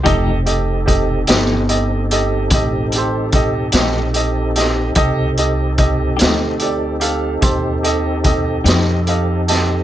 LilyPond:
<<
  \new Staff \with { instrumentName = "Upright piano" } { \time 12/8 \key f \mixolydian \tempo 4. = 49 <g' a' ees''>8 <g' a' ees''>8 <g' a' ees''>8 <g' a' ees''>8 <g' a' ees''>8 <g' a' ees''>8 <g' a' ees''>8 <g' a' c''>8 <g' a' ees''>8 <g' a' ees''>8 <g' a' ees''>8 <g' a' ees''>8 | <g' a' ees''>8 <g' a' ees''>8 <g' a' ees''>8 <g' a' ees''>8 <g' a' d''>8 <g' a' f''>8 <g' a' c''>8 <g' a' ees''>8 <g' a' ees''>8 <g' a' ees''>8 <g' a' ees'' f''>8 <g' a' ees'' a''>8 | }
  \new Staff \with { instrumentName = "Tonewheel organ" } { \time 12/8 \key f \mixolydian <c' ees' g' a'>1. | <c' ees' g' a'>1. | }
  \new Staff \with { instrumentName = "Clean electric guitar" } { \time 12/8 \key f \mixolydian <f a ees' g'>8 r4 <f a ees' g'>8 r2 r8 <f a ees' g'>8 r4 | r4. <f a ees' g'>8 r2 r8 <f a ees' g'>8 r4 | }
  \new Staff \with { instrumentName = "Upright bass" } { \clef bass \time 12/8 \key f \mixolydian f,,4. g,,4. a,,4. bes,,4. | c,4. d,4. ees,4. f,4. | }
  \new DrumStaff \with { instrumentName = "Drums" } \drummode { \time 12/8 <hh bd>8 hh8 <hh bd>8 <hh sn>8 hh8 hh8 <hh bd>8 hh8 <hh bd>8 <hh sn>8 hh8 <hh sn>8 | <hh bd>8 hh8 <hh bd>8 <hh sn>8 hh8 hh8 <hh bd>8 hh8 <hh bd>8 <hh sn>8 hh8 <hh sn>8 | }
>>